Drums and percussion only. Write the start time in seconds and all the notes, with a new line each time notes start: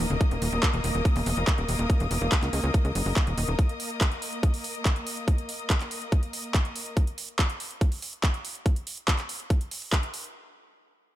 0.10 closed hi-hat
0.21 kick, closed hi-hat
0.31 closed hi-hat
0.42 open hi-hat
0.52 closed hi-hat
0.63 kick, clap, closed hi-hat
0.73 closed hi-hat
0.84 open hi-hat
0.95 closed hi-hat
1.05 kick, closed hi-hat
1.16 open hi-hat
1.26 open hi-hat
1.37 closed hi-hat
1.47 kick, clap, closed hi-hat
1.58 closed hi-hat
1.69 open hi-hat
1.90 kick, closed hi-hat
2.00 closed hi-hat
2.11 open hi-hat
2.21 closed hi-hat
2.32 kick, clap, closed hi-hat
2.42 clap, closed hi-hat
2.53 open hi-hat
2.64 closed hi-hat
2.74 kick, closed hi-hat
2.85 closed hi-hat
2.95 open hi-hat
3.06 open hi-hat
3.16 kick, clap, closed hi-hat
3.27 closed hi-hat
3.38 open hi-hat
3.48 closed hi-hat
3.59 kick, closed hi-hat
3.69 closed hi-hat
3.80 open hi-hat
4.01 kick, clap, closed hi-hat
4.12 closed hi-hat
4.22 open hi-hat
4.33 closed hi-hat
4.43 kick, closed hi-hat
4.54 open hi-hat
4.64 open hi-hat
4.75 closed hi-hat
4.85 kick, clap, closed hi-hat
4.96 closed hi-hat
5.07 open hi-hat
5.17 closed hi-hat
5.28 kick, closed hi-hat
5.38 closed hi-hat
5.49 open hi-hat
5.59 closed hi-hat
5.70 kick, clap, closed hi-hat
5.81 clap, closed hi-hat
5.91 open hi-hat
6.02 closed hi-hat
6.12 kick, closed hi-hat
6.23 closed hi-hat
6.33 open hi-hat
6.44 closed hi-hat
6.54 kick, clap, closed hi-hat
6.65 closed hi-hat
6.76 open hi-hat
6.86 closed hi-hat
6.97 kick, closed hi-hat
7.07 closed hi-hat
7.18 open hi-hat
7.28 closed hi-hat
7.39 kick, clap, closed hi-hat
7.50 closed hi-hat
7.60 open hi-hat
7.71 closed hi-hat
7.81 kick, closed hi-hat
7.92 open hi-hat
8.02 open hi-hat
8.13 closed hi-hat
8.23 kick, clap, closed hi-hat
8.34 closed hi-hat
8.45 open hi-hat
8.55 closed hi-hat
8.66 kick, closed hi-hat
8.76 closed hi-hat
8.87 open hi-hat
8.97 closed hi-hat
9.08 kick, clap, closed hi-hat
9.19 clap, closed hi-hat
9.29 open hi-hat
9.40 closed hi-hat
9.50 kick, closed hi-hat
9.61 closed hi-hat
9.71 open hi-hat
9.82 open hi-hat
9.92 kick, clap, closed hi-hat
10.03 closed hi-hat
10.14 open hi-hat
10.24 closed hi-hat